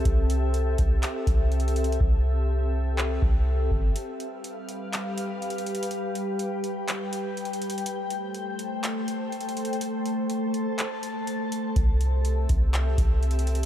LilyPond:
<<
  \new Staff \with { instrumentName = "Ambient pad" } { \time 4/4 \key c \major \tempo 4 = 123 << { e''1~ | e''1 | f''1 | g''1~ |
g''1 | a''1 | e''1 | } \\ { <c' g' a'>1~ | <c' g' a'>1 | <g g' b'>1~ | <g g' b'>1 |
<a a' c''>1~ | <a a' c''>1 | <c' g'>1 | } >> }
  \new Staff \with { instrumentName = "808-style bass" } { \clef bass \time 4/4 \key c \major c,4. c,8 r8 c,4. | c,2~ c,8 c,4 g,,8 | r1 | r1 |
r1 | r1 | c,4. c,4 c,4. | }
  \new DrumStaff \with { instrumentName = "Drums" } \drummode { \time 4/4 <hh bd>8 hh8 hh8 <hh bd>8 <hc hh>8 <hh bd>8 \tuplet 3/2 { hh16 hh16 hh16 hh16 hh16 hh16 } | bd4 r4 hc8 bd8 r8 bd8 | hh8 hh8 hh8 hh8 <hc hh>8 hh8 \tuplet 3/2 { hh16 hh16 hh16 hh16 hh16 hh16 } | hh8 hh8 hh8 hh8 <hc hh>8 hh8 \tuplet 3/2 { hh16 hh16 hh16 hh16 hh16 hh16 } |
hh8 hh8 hh8 hh8 <hc hh>8 hh8 \tuplet 3/2 { hh16 hh16 hh16 hh16 hh16 hh16 } | hh8 hh8 hh8 hh8 <hc hh>8 hh8 hh8 hh8 | <hh bd>8 hh8 hh8 <hh bd>8 <hc hh>8 <hh bd>8 \tuplet 3/2 { hh16 hh16 hh16 hh16 hh16 r16 } | }
>>